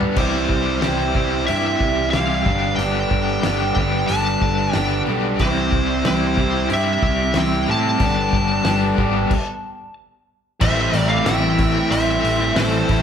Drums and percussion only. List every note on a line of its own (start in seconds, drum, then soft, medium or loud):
0.01 floor tom medium
0.16 kick medium
0.16 crash medium
0.50 kick medium
0.82 snare loud
0.82 open hi-hat soft
1.15 kick medium
1.48 open hi-hat soft
1.80 kick medium
2.13 snare medium
2.13 open hi-hat soft
2.46 kick medium
2.79 open hi-hat soft
3.11 kick medium
3.43 snare loud
3.43 open hi-hat soft
3.76 kick medium
4.09 open hi-hat medium
4.42 kick medium
4.73 snare medium
4.73 open hi-hat medium
5.39 kick loud
5.39 open hi-hat soft
5.72 kick medium
6.05 snare loud
6.05 open hi-hat soft
6.37 kick medium
6.70 open hi-hat soft
7.03 kick medium
7.34 snare medium
7.34 open hi-hat soft
8.00 kick loud
8.00 open hi-hat medium
8.33 kick medium
8.65 snare loud
8.65 open hi-hat medium
8.98 kick medium
9.31 kick loud
9.31 crash medium
10.61 kick medium
10.61 crash loud
10.94 open hi-hat medium
11.26 snare loud
11.26 open hi-hat medium
11.59 kick medium
11.59 open hi-hat soft
11.92 open hi-hat medium
12.25 open hi-hat medium
12.40 snare soft
12.56 snare loud
12.56 open hi-hat medium
12.89 kick medium
12.89 open hi-hat soft